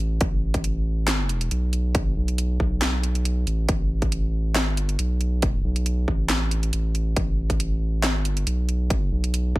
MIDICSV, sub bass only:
0, 0, Header, 1, 2, 480
1, 0, Start_track
1, 0, Tempo, 434783
1, 230, Time_signature, 4, 2, 24, 8
1, 10591, End_track
2, 0, Start_track
2, 0, Title_t, "Sub bass"
2, 0, Program_c, 0, 38
2, 0, Note_on_c, 0, 33, 95
2, 211, Note_off_c, 0, 33, 0
2, 229, Note_on_c, 0, 33, 97
2, 1651, Note_off_c, 0, 33, 0
2, 1667, Note_on_c, 0, 35, 95
2, 2164, Note_off_c, 0, 35, 0
2, 2164, Note_on_c, 0, 34, 95
2, 2370, Note_off_c, 0, 34, 0
2, 2389, Note_on_c, 0, 35, 99
2, 2851, Note_off_c, 0, 35, 0
2, 2870, Note_on_c, 0, 35, 98
2, 3812, Note_off_c, 0, 35, 0
2, 3828, Note_on_c, 0, 33, 100
2, 4051, Note_off_c, 0, 33, 0
2, 4068, Note_on_c, 0, 33, 98
2, 5073, Note_off_c, 0, 33, 0
2, 5073, Note_on_c, 0, 32, 98
2, 5360, Note_off_c, 0, 32, 0
2, 5360, Note_on_c, 0, 31, 98
2, 5491, Note_off_c, 0, 31, 0
2, 5509, Note_on_c, 0, 35, 96
2, 6211, Note_off_c, 0, 35, 0
2, 6230, Note_on_c, 0, 35, 101
2, 6692, Note_off_c, 0, 35, 0
2, 6711, Note_on_c, 0, 33, 100
2, 7412, Note_off_c, 0, 33, 0
2, 7431, Note_on_c, 0, 33, 90
2, 7892, Note_off_c, 0, 33, 0
2, 7909, Note_on_c, 0, 33, 97
2, 8914, Note_off_c, 0, 33, 0
2, 8914, Note_on_c, 0, 32, 97
2, 9190, Note_off_c, 0, 32, 0
2, 9190, Note_on_c, 0, 31, 97
2, 9331, Note_off_c, 0, 31, 0
2, 9348, Note_on_c, 0, 35, 93
2, 10051, Note_off_c, 0, 35, 0
2, 10064, Note_on_c, 0, 35, 96
2, 10529, Note_off_c, 0, 35, 0
2, 10550, Note_on_c, 0, 33, 96
2, 10591, Note_off_c, 0, 33, 0
2, 10591, End_track
0, 0, End_of_file